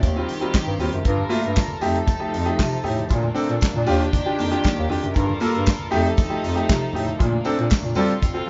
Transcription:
0.02 bass clarinet D#2, string section D#3 C4 G4, kick, closed hi-hat, tambourine, muted conga, high conga, low conga
0.16 grand piano G3 C4 F4, muted conga
0.29 grand piano D#3, open hi-hat, tambourine
0.41 grand piano G3 C4 F4, closed hi-hat
0.54 grand piano D#3, kick, snare, clap, closed hi-hat, tambourine
0.66 bass clarinet G2, muted conga
0.79 bass clarinet D#2, grand piano G3 C4 F4, open hi-hat, tambourine, low conga
0.92 bass clarinet F#2, grand piano C4 F4, closed hi-hat, high conga
1.04 grand piano G2 D3, bass clarinet G2, string section G3 F4 A4 A#4, kick, closed hi-hat
1.17 high conga
1.29 grand piano A3 A#3 F4, open hi-hat, tambourine
1.43 bass clarinet G2, grand piano A#3 F4, closed hi-hat
1.56 kick, snare, clap, closed hi-hat, tambourine
1.68 muted conga, high conga
1.81 bass clarinet F2, string section F3 D#4, grand piano A3 D#4 G4, open hi-hat, tambourine, low conga
1.96 closed hi-hat
2.07 kick, closed hi-hat, tambourine, high conga, low conga
2.20 grand piano A3 D#4 G4
2.32 bass clarinet F2, grand piano F3, open hi-hat, tambourine
2.45 grand piano A3 D#4 G4, closed hi-hat
2.58 bass clarinet C3, grand piano F3, kick, snare, clap, closed hi-hat, tambourine, muted conga
2.83 bass clarinet A2, grand piano A3 D#4 G4, open hi-hat, tambourine, low conga
2.97 grand piano D#4 G4, closed hi-hat, high conga
3.09 grand piano A#2 F3, bass clarinet A#2, string section A3 A#3 D4, kick, closed hi-hat, tambourine
3.23 muted conga, high conga
3.34 grand piano C4 D4 A4, open hi-hat, tambourine
3.48 bass clarinet A#2, grand piano D4 A4, closed hi-hat
3.61 kick, snare, clap, closed hi-hat, tambourine
3.74 bass clarinet A#2, muted conga, high conga
3.86 bass clarinet D#2, string section D#3 G4, grand piano D4 F4 G4, open hi-hat, tambourine, low conga
4.02 closed hi-hat
4.13 kick, closed hi-hat, tambourine, muted conga, high conga, low conga
4.26 grand piano D4 F4 G4, muted conga
4.39 bass clarinet F2, grand piano D#3 A#3, open hi-hat, tambourine
4.51 grand piano D4 F4 G4, closed hi-hat
4.64 grand piano D#3 A#3, kick, snare, clap, closed hi-hat, tambourine, muted conga
4.76 bass clarinet D#2, muted conga
4.90 bass clarinet F2, grand piano D4 F4 G4, open hi-hat, low conga
5.02 bass clarinet F#2, grand piano F4 G4, closed hi-hat, high conga
5.14 grand piano G2 D3, bass clarinet G2, string section G3 F4 A4 A#4, kick, closed hi-hat, tambourine, muted conga
5.29 muted conga, high conga
5.40 grand piano A#3 F4 A4, open hi-hat, tambourine
5.53 bass clarinet G2, grand piano F4 A4, closed hi-hat
5.66 kick, snare, clap, closed hi-hat, tambourine
5.79 high conga
5.91 bass clarinet F2, string section F3 D#4, grand piano A3 D#4 G4, open hi-hat, tambourine, low conga
6.06 closed hi-hat
6.17 kick, closed hi-hat, tambourine, muted conga, high conga, low conga
6.30 grand piano A3 D#4 G4, muted conga
6.43 bass clarinet F2, grand piano F3, open hi-hat, tambourine
6.55 grand piano A3 D#4 G4, closed hi-hat
6.69 bass clarinet C3, grand piano F3, kick, snare, clap, closed hi-hat, tambourine
6.81 muted conga
6.93 bass clarinet A2, grand piano A3 D#4 G4, open hi-hat, low conga
7.07 grand piano D#4 G4, closed hi-hat, high conga
7.19 grand piano A#2 F3, bass clarinet A#2, string section A3 A#3 D4, kick, closed hi-hat, muted conga
7.32 high conga
7.45 grand piano C4 D4 A4, open hi-hat, tambourine
7.58 bass clarinet A#2, grand piano D4 A4, closed hi-hat
7.70 kick, snare, clap, closed hi-hat, tambourine, muted conga
7.83 bass clarinet A#2, muted conga, high conga
7.95 bass clarinet G3, string section G3 C4 F4, grand piano C4 F4 A4, open hi-hat, tambourine, low conga
8.11 closed hi-hat
8.22 kick, closed hi-hat, tambourine, muted conga, high conga, low conga
8.34 grand piano C4 F4 A4, muted conga

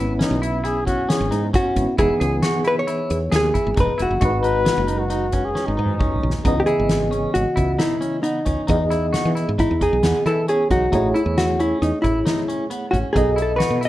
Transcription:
Already playing: fretless electric bass G#1, tine electric piano B3 C#4 E4, clean electric guitar E4, hollow-body jazz guitar B4
0.19 clean electric guitar C#4, flugelhorn D#4, snare, closed hi-hat
0.31 fretless electric bass B1
0.42 clean electric guitar E4, flugelhorn E4, closed hi-hat
0.64 clean electric guitar E4, flugelhorn G#4, snare, closed hi-hat
0.86 clean electric guitar C#4, flugelhorn F#4, kick, closed hi-hat
1.09 clean electric guitar C#4, flugelhorn G#4, snare, closed hi-hat
1.21 fretless electric bass G#1
1.31 fretless electric bass G#2, clean electric guitar D#4, snare, closed hi-hat
1.53 clean electric guitar C#4, hollow-body jazz guitar F#4, kick, closed hi-hat
1.75 fretless electric bass G#1, tine electric piano B3 C#4 E4, kick, closed hi-hat
1.97 fretless electric bass E1, tine electric piano E3 B3 D#4 G#4, clean electric guitar E4, hollow-body jazz guitar G#4, kick, closed hi-hat
2.20 fretless electric bass C#2, clean electric guitar G#4, snare, closed hi-hat
2.42 clean electric guitar F#4, snare, closed hi-hat
2.64 clean electric guitar E4, hollow-body jazz guitar B4, closed hi-hat
2.79 hollow-body jazz guitar C#5
2.87 clean electric guitar E4, closed hi-hat
3.10 fretless electric bass E2, closed hi-hat
3.32 fretless electric bass D#2, clean electric guitar G#4, snare, closed hi-hat
3.36 hollow-body jazz guitar G#4
3.54 clean electric guitar E4, kick, closed hi-hat
3.67 fretless electric bass G#1
3.76 fretless electric bass E1, clean electric guitar D#4, hollow-body jazz guitar B4, kick, closed hi-hat
3.98 fretless electric bass E1, clean electric guitar E4, closed hi-hat
4.02 hollow-body jazz guitar F#4
4.11 fretless electric bass F#1
4.21 fretless electric bass G#1, tine electric piano G#3 D#4 F#4, clean electric guitar F#4, kick, closed hi-hat
4.25 tine electric piano B4
4.43 clean electric guitar D#4, flugelhorn B4, closed hi-hat
4.65 clean electric guitar B3, snare, closed hi-hat
4.78 fretless electric bass F#1
4.87 clean electric guitar D#4, closed hi-hat
4.99 flugelhorn F#4
5.10 clean electric guitar D#4, snare, closed hi-hat
5.32 clean electric guitar C#4, kick, closed hi-hat
5.45 flugelhorn G#4
5.55 clean electric guitar C#4, snare
5.66 fretless electric bass G#1, flugelhorn D#4
5.77 fretless electric bass G#2, clean electric guitar D#4
5.86 mid tom
5.99 clean electric guitar C#4, kick, mid tom
6.16 floor tom
6.23 fretless electric bass B1
6.30 snare
6.44 fretless electric bass C#2, tine electric piano C#3 E3 B3 D#5, clean electric guitar D#4, kick, closed hi-hat
6.60 hollow-body jazz guitar G4
6.66 clean electric guitar E4, hollow-body jazz guitar G#4, closed hi-hat
6.79 fretless electric bass G#1
6.89 snare, closed hi-hat
7.11 clean electric guitar C#4, closed hi-hat
7.34 fretless electric bass G#1, hollow-body jazz guitar F#4, closed hi-hat
7.56 fretless electric bass C#2, clean electric guitar E4, kick, closed hi-hat
7.78 clean electric guitar D#4, hollow-body jazz guitar E4, snare, closed hi-hat
8.01 clean electric guitar C#4, closed hi-hat
8.23 clean electric guitar B3, hollow-body jazz guitar D#4, closed hi-hat
8.45 fretless electric bass C#2, clean electric guitar C#4, kick, snare, closed hi-hat
8.67 fretless electric bass E2, tine electric piano E3 B3 G#4 D#5, clean electric guitar D#4, kick, closed hi-hat
8.90 clean electric guitar E4, snare, closed hi-hat
9.13 clean electric guitar F#4, snare, closed hi-hat
9.25 fretless electric bass E3
9.35 clean electric guitar E4, snare, closed hi-hat
9.49 fretless electric bass G#2
9.58 clean electric guitar D#4, hollow-body jazz guitar E4, kick, snare, closed hi-hat
9.71 fretless electric bass E2
9.81 clean electric guitar D#4, hollow-body jazz guitar G#4, kick, closed hi-hat
9.93 fretless electric bass B1
10.03 fretless electric bass E2, clean electric guitar B3, snare, closed hi-hat
10.26 fretless electric bass E3, clean electric guitar E4, hollow-body jazz guitar A4, snare, closed hi-hat
10.48 tine electric piano E3 B3 G#4 C#5, clean electric guitar C#4, hollow-body jazz guitar G#4, closed hi-hat
10.71 fretless electric bass B1, clean electric guitar D#4, hollow-body jazz guitar F#4, kick, closed hi-hat
10.91 fretless electric bass A1, tine electric piano A3 E4 G#4 C#5, clean electric guitar D#4, kick, closed hi-hat
11.14 clean electric guitar E4, hollow-body jazz guitar E4, closed hi-hat
11.26 fretless electric bass E2
11.38 hollow-body jazz guitar F#4, snare, closed hi-hat
11.60 clean electric guitar C#4, hollow-body jazz guitar E4, closed hi-hat
11.82 fretless electric bass E2, hollow-body jazz guitar D#4, snare, closed hi-hat
12.02 fretless electric bass A1, hollow-body jazz guitar E4, clean electric guitar E4, kick, closed hi-hat
12.26 clean electric guitar D#4, snare, closed hi-hat
12.48 clean electric guitar C#4, closed hi-hat
12.70 clean electric guitar B3, closed hi-hat
12.91 fretless electric bass A1, clean electric guitar C#4, hollow-body jazz guitar F#4, kick, closed hi-hat
13.13 fretless electric bass B1, tine electric piano B2 B3 A4, clean electric guitar D#4, hollow-body jazz guitar G#4, kick, closed hi-hat
13.18 tine electric piano D#5
13.36 clean electric guitar E4, closed hi-hat
13.42 hollow-body jazz guitar A4
13.56 clean electric guitar F#4, hollow-body jazz guitar B4, snare, closed hi-hat
13.70 fretless electric bass B2
13.81 clean electric guitar E4, closed hi-hat
13.85 hollow-body jazz guitar D#5

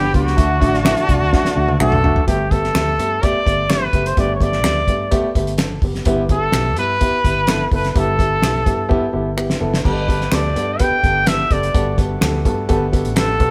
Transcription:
Already playing: fingered electric bass G1, tonewheel organ D3 G3 B3 G4, trumpet G4, string section G4 D5 B5
0.13 fingered electric bass C#2, grand piano B3 D4 G4, trumpet F#4, kick, closed hi-hat
0.27 snare
0.37 fingered electric bass D2, grand piano D3 A3 D4 F#4, tonewheel organ F#3 A3 F#4, string section F#4 D5 A5, kick, closed hi-hat
0.60 fingered electric bass A1, grand piano A3 D4 F#4, kick, closed hi-hat
0.74 snare
0.85 grand piano A3 D4 E4, finger snap, snare, closed hi-hat
0.97 closed hi-hat
1.08 fingered electric bass C2, grand piano A3 D4 F#4, kick, closed hi-hat
1.21 fingered electric bass D2
1.32 grand piano A3 D4 F#4, kick, snare
1.44 muted fingered electric bass stroke, snare
1.55 fingered electric bass D2, grand piano A3 D4 F#4
1.68 high tom
1.80 fingered electric bass B1, grand piano A3 D4 F#4, trumpet A4, finger snap, mid tom
1.92 mid tom
2.03 fingered electric bass F#1, grand piano A3 D4 F#4, floor tom
2.16 floor tom
2.27 fingered electric bass G1, grand piano G2 A3 B3 G4, trumpet G4, kick, closed hi-hat
2.51 grand piano A3 B3 G4, trumpet A4, kick, closed hi-hat
2.64 snare
2.75 fingered electric bass D2, grand piano A3 B3 G4, finger snap, snare, closed hi-hat
2.98 fingered electric bass G2, grand piano A3 B3 G4, closed hi-hat
3.22 grand piano A3 B3 G4, trumpet D5, kick, closed hi-hat
3.34 muted fingered electric bass stroke
3.46 fingered electric bass G1, grand piano A3 B3 G4, kick, closed hi-hat
3.69 grand piano A3 B3 G4, trumpet B4, finger snap, snare, closed hi-hat
3.93 fingered electric bass F#1, grand piano A3 B3 G4, kick, closed hi-hat
4.06 trumpet C5, closed hi-hat
4.17 fingered electric bass G1, grand piano G2 A3 B3 G4, trumpet D5, kick, closed hi-hat
4.35 trumpet C#5
4.41 grand piano A3 B3 G4, trumpet D5, kick, closed hi-hat
4.53 snare
4.64 fingered electric bass D2, grand piano A3 B3 G4, finger snap, snare, closed hi-hat
4.87 fingered electric bass G2, grand piano A3 B3 G4, kick, closed hi-hat
5.11 grand piano A3 B3 G4, kick, closed hi-hat
5.24 muted fingered electric bass stroke
5.35 fingered electric bass G1, grand piano A3 B3 G4, kick, closed hi-hat
5.47 closed hi-hat
5.58 grand piano A4, finger snap, snare, closed hi-hat
5.82 fingered electric bass F#1, grand piano B3 G4, kick, open hi-hat
5.95 snare
6.05 fingered electric bass G1, grand piano G2 B3 E4 G4, kick, closed hi-hat
6.29 grand piano B3 E4 G4, trumpet A4, kick, closed hi-hat
6.52 fingered electric bass B1, grand piano B3 E4 G4, finger snap, snare, closed hi-hat
6.76 fingered electric bass G2, grand piano B3 E4 G4, trumpet B4, closed hi-hat
7.00 grand piano B3 E4 G4, kick, closed hi-hat
7.12 muted fingered electric bass stroke
7.24 fingered electric bass G1, grand piano B3 E4 G4, kick, closed hi-hat
7.47 grand piano B3 E4 A4, finger snap, snare, closed hi-hat
7.71 fingered electric bass F#1, grand piano B3 E4 A4, trumpet B4, kick, open hi-hat
7.85 snare, closed hi-hat
7.90 trumpet B4
7.95 fingered electric bass G1, grand piano G2 B3 E4 G4, trumpet A4, kick, closed hi-hat
8.18 grand piano B3 E4 G4, kick, closed hi-hat
8.42 fingered electric bass B1, grand piano B3 E4 G4, finger snap, snare, closed hi-hat
8.66 fingered electric bass G2, grand piano B3 E4 G4, kick, closed hi-hat
8.89 grand piano B3 E4 G4, kick
9.13 fingered electric bass G1, grand piano B3 E4 G4
9.37 grand piano B3 E4 G4, finger snap
9.50 snare
9.60 fingered electric bass F#1, grand piano B3 E4 A4
9.74 snare
9.84 fingered electric bass G1, grand piano G2 B3 G4 A4, tonewheel organ D3 A3 B3 G4, trumpet B4, kick, crash
10.08 grand piano B3 G4 A4, kick, closed hi-hat
10.21 snare
10.32 fingered electric bass D2, grand piano B3 G4 A4, trumpet D5, finger snap, snare, closed hi-hat
10.55 fingered electric bass G2, grand piano B3 G4 A4, closed hi-hat
10.79 grand piano B3 G4 B4, trumpet G5, kick, closed hi-hat
10.91 muted fingered electric bass stroke
11.03 fingered electric bass G1, grand piano B3 G4 A4, kick, closed hi-hat
11.26 grand piano B3 G4 A4, trumpet E5, finger snap, snare, closed hi-hat
11.50 fingered electric bass F#1, grand piano B3 G4 A4, trumpet D5, kick, closed hi-hat
11.63 closed hi-hat
11.74 fingered electric bass G1, grand piano G2 B3 G4 A4, tonewheel organ F#4, kick, closed hi-hat
11.98 grand piano B3 G4 A4, kick, closed hi-hat
12.21 fingered electric bass D2, grand piano B3 G4 A4, finger snap, snare, closed hi-hat
12.45 fingered electric bass G2, grand piano B3 G4 A4, kick, closed hi-hat
12.69 fingered electric bass G1, grand piano B3 G4 A4, kick, closed hi-hat
12.92 grand piano B3 G4 A4, kick, closed hi-hat
13.05 fingered electric bass A1, closed hi-hat
13.16 grand piano B3 G4 B4, trumpet A4, finger snap, snare, closed hi-hat
13.40 fingered electric bass B1, grand piano B3 G4 A4, kick, closed hi-hat

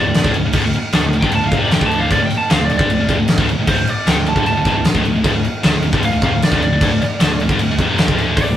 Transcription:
Already playing: lead electric guitar D5
0.06 picked electric bass D1, distorted electric guitar D2 A2
0.14 muted distorted electric guitar stroke, muted picked electric bass stroke, snare, crash
0.24 picked electric bass D1, distorted electric guitar D2 A2, kick
0.34 picked electric bass D1, distorted electric guitar D2 A2, crash
0.45 picked electric bass D1, distorted electric guitar D2 A2
0.53 picked electric bass D1, distorted electric guitar D2 A2, kick, crash
0.64 picked electric bass D1, distorted electric guitar D2 A2
0.73 muted picked electric bass stroke, muted distorted electric guitar stroke, crash
0.92 picked electric bass D2, distorted electric guitar D3 A3, snare, crash
1.03 picked electric bass D1, distorted electric guitar D2 A2
1.13 picked electric bass D1, distorted electric guitar D2 A2, crash
1.21 distorted electric guitar G2 D3, lead electric guitar G5, kick
1.32 picked electric bass D1, distorted electric guitar D2 A2, lead electric guitar A5, crash
1.42 picked electric bass D1, distorted electric guitar D2 A2
1.47 lead electric guitar F5
1.51 picked electric bass F1, distorted electric guitar F2 C3, kick, crash
1.59 picked electric bass F1, lead electric guitar D5
1.64 distorted electric guitar F2 C3 F3
1.71 lead electric guitar G5, snare, crash
1.81 picked electric bass D1, distorted electric guitar D2 A2 D3, kick
1.86 lead electric guitar A5
1.91 crash
2.00 lead electric guitar F5
2.11 picked electric bass D1, distorted electric guitar D2 A2, lead electric guitar D5, kick, crash
2.21 picked electric bass D1, distorted electric guitar D2 A2
2.26 lead electric guitar G5
2.30 muted distorted electric guitar stroke, muted picked electric bass stroke, snare, crash
2.37 lead electric guitar A5
2.50 picked electric bass D2, distorted electric guitar D3 A3, lead electric guitar F5, snare, crash
2.60 picked electric bass D1, distorted electric guitar D2 A2
2.65 lead electric guitar D5
2.69 picked electric bass D1, distorted electric guitar D2 A2, crash
2.78 picked electric bass G1, distorted electric guitar G2 D3, lead electric guitar D5, kick
2.89 picked electric bass D1, distorted electric guitar D2 A2, crash
3.00 picked electric bass D1, distorted electric guitar D2 A2
3.09 picked electric bass F1, distorted electric guitar F2 C3, kick, crash
3.18 picked electric bass D1, distorted electric guitar D2 A2
3.28 muted distorted electric guitar stroke, muted picked electric bass stroke, snare, crash
3.38 picked electric bass D1, distorted electric guitar D2 A2, kick
3.48 picked electric bass D1, distorted electric guitar D2 A2, crash
3.58 picked electric bass D1, distorted electric guitar D2 A2
3.67 picked electric bass D1, distorted electric guitar D2 A2, lead electric guitar C5, kick, crash
3.77 picked electric bass D1, distorted electric guitar D2 A2
3.87 lead electric guitar D5, muted distorted electric guitar stroke, crash
4.06 picked electric bass D2, distorted electric guitar D3 A3, lead electric guitar G5, snare, crash
4.15 picked electric bass D1, distorted electric guitar D2 A2
4.26 picked electric bass D1, distorted electric guitar D2 A2, lead electric guitar A5, crash
4.36 picked electric bass G1, distorted electric guitar G2 D3, kick
4.45 picked electric bass D1, distorted electric guitar D2 A2, lead electric guitar A5, crash
4.55 picked electric bass D1, distorted electric guitar D2 A2
4.65 picked electric bass F1, distorted electric guitar F2 C3, kick, crash
4.76 picked electric bass D1, distorted electric guitar D2 A2
4.84 muted distorted electric guitar stroke, snare, crash
4.95 picked electric bass D1, distorted electric guitar D2 A2, kick
5.05 picked electric bass D1, distorted electric guitar D2 A2, crash
5.15 picked electric bass D1, distorted electric guitar D2 A2
5.23 picked electric bass D1, distorted electric guitar D2 A2, kick, crash
5.34 picked electric bass D1, distorted electric guitar D2 A2
5.44 muted distorted electric guitar stroke, muted picked electric bass stroke, crash
5.63 picked electric bass D2, distorted electric guitar D3 A3, snare, crash
5.73 picked electric bass D1, distorted electric guitar D2 A2
5.82 picked electric bass D1, distorted electric guitar D2 A2, crash
5.93 picked electric bass G1, distorted electric guitar G2 D3, kick
6.03 picked electric bass D1, distorted electric guitar D2 A2, lead electric guitar F5, crash
6.12 picked electric bass D1, distorted electric guitar D2 A2
6.22 picked electric bass F1, distorted electric guitar F2 C3, lead electric guitar F5, kick, crash
6.32 picked electric bass D1, distorted electric guitar D2 A2
6.42 lead electric guitar D5, muted distorted electric guitar stroke, muted picked electric bass stroke, snare, crash
6.52 picked electric bass D1, distorted electric guitar D2 A2, kick
6.62 picked electric bass D1, distorted electric guitar D2 A2, lead electric guitar D5, crash
6.73 picked electric bass D1, distorted electric guitar D2 A2
6.81 picked electric bass D1, distorted electric guitar D2 A2, kick, crash
6.92 picked electric bass D1, distorted electric guitar D2 A2
7.02 muted distorted electric guitar stroke, snare, crash
7.20 picked electric bass D2, distorted electric guitar D3 A3, snare, crash
7.30 picked electric bass D1, distorted electric guitar D2 A2
7.40 picked electric bass D1, distorted electric guitar D2 A2, crash
7.49 picked electric bass G1, distorted electric guitar G2 D3, kick
7.59 picked electric bass D1, distorted electric guitar D2 A2, crash
7.70 picked electric bass D1, distorted electric guitar D2 A2
7.78 picked electric bass F1, distorted electric guitar F2 C3, kick, crash
7.89 picked electric bass F1, distorted electric guitar F2 C3 F3
7.98 snare, crash
8.08 picked electric bass D1, distorted electric guitar D2 A2 D3, kick
8.18 crash
8.37 picked electric bass D1, distorted electric guitar D2 A2, lead electric guitar D5, kick, open hi-hat
8.47 picked electric bass D1, distorted electric guitar D2 A2

